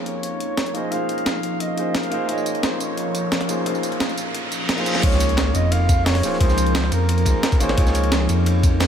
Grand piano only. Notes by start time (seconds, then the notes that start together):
Already playing: A#3 D#4 F4 G#4 C#5
0.73 A#3 D#4 F4 G#4 C5
0.90 A#3 D#4 F4 G#4 C5
1.76 A#3 D#4 F4 G#4 C5
2.10 A#3 D#4 F4 G#4 C5
2.26 A#3 D#4 F4
2.31 G#4 C#5
3.47 A#3 D#4 F4 G#4 C5
3.64 A#3 D#4 F4 G#4 C5
4.76 A#3 D#4 F4 G#4 C5
5.00 A#3 D#4 F4
5.05 G#4 C#5
6.22 A#3 D#4 F4 G#4 C5
6.39 A#3 D#4 F4 G#4 C5
7.24 A#3 D#4 F4 G#4 C5
7.59 A#3 D#4 F4 G#4 C5
7.74 A#3 D#4 F4
7.79 G#4 C#5